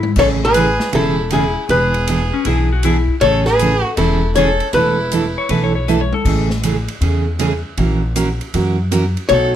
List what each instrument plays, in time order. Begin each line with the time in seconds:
Already playing: upright bass G#2, electric slide guitar E4
0.03 high tom
0.16 upright bass A1, steel-string acoustic guitar C#3 E3 A3 C#4 G#4, fiddle A4, hollow-body jazz guitar C#5, kick, crash
0.44 fiddle G#4, hollow-body jazz guitar B4
0.54 steel-string acoustic guitar C#3 E3 A3 C#4 G#4, hi-hat pedal, ride
0.80 snare
0.92 upright bass E1, steel-string acoustic guitar C#3 E3 A3 C#4 G#4, fiddle E4, hollow-body jazz guitar A4, ride
1.30 steel-string acoustic guitar C#3 E3 A3 C#4 G#4, fiddle E4, hollow-body jazz guitar G#4, hi-hat pedal, ride
1.69 upright bass E1, steel-string acoustic guitar E3 B3 D4 G#4, fiddle G#4, hollow-body jazz guitar B4, ride
1.94 ride
2.07 steel-string acoustic guitar E3 B3 D4 G#4, hi-hat pedal, ride
2.33 electric slide guitar C#4
2.45 upright bass B1, steel-string acoustic guitar E3 B3 D4 G#4, electric slide guitar E4, ride
2.73 electric slide guitar F#4
2.83 steel-string acoustic guitar E3 B3 D4 G#4, electric slide guitar E4, hi-hat pedal, ride
3.08 kick
3.21 upright bass A1, steel-string acoustic guitar C#3 E3 A3 C#4 G#4, fiddle A4, hollow-body jazz guitar C#5, ride
3.45 fiddle G#4, hollow-body jazz guitar B4, snare
3.59 steel-string acoustic guitar C#3 E3 A3 C#4 G#4, hi-hat pedal, ride
3.82 fiddle F#4
3.87 hollow-body jazz guitar A4
3.97 upright bass E1, steel-string acoustic guitar C#3 E3 A3 C#4 G#4, fiddle E4, hollow-body jazz guitar A4, ride
4.35 steel-string acoustic guitar C#3 E3 A3 C#4 G#4, fiddle A4, hollow-body jazz guitar C#5, hi-hat pedal, ride
4.60 ride
4.73 upright bass E1, steel-string acoustic guitar E3 A3 D4 E4 A4, fiddle E4, hollow-body jazz guitar B4, ride
5.12 steel-string acoustic guitar E3 A3 D4 E4 A4, hi-hat pedal, ride
5.38 electric slide guitar C#5
5.49 upright bass B1, steel-string acoustic guitar E3 A3 D4 E4 A4, electric slide guitar B4, ride
5.64 electric slide guitar C#5
5.75 electric slide guitar C#5
5.88 steel-string acoustic guitar E3 A3 D4 E4 A4, electric slide guitar B4, hi-hat pedal
6.00 electric slide guitar C#5, high tom
6.13 electric slide guitar A4, high tom
6.25 upright bass A1, steel-string acoustic guitar C#3 E3 A3 C#4 G#4, kick, crash
6.50 snare
6.63 steel-string acoustic guitar C#3 E3 A3 C#4 G#4, hi-hat pedal, ride
6.88 ride
7.01 upright bass E2, steel-string acoustic guitar C#3 E3 A3 C#4 G#4, ride
7.39 steel-string acoustic guitar C#3 E3 A3 C#4 G#4, hi-hat pedal, ride
7.77 upright bass A#1, steel-string acoustic guitar E3 A#3 C#4 F#4 A#4, ride
8.16 steel-string acoustic guitar E3 A#3 C#4 F#4 A#4, hi-hat pedal, ride
8.41 ride
8.54 upright bass F#2, steel-string acoustic guitar E3 A#3 C#4 F#4 A#4, ride
8.91 steel-string acoustic guitar E3 A#3 C#4 F#4 A#4, hi-hat pedal, ride
9.17 ride
9.29 upright bass B1, steel-string acoustic guitar B2 F#3 A3 D#4 F#4, fiddle A4, hollow-body jazz guitar C#5, ride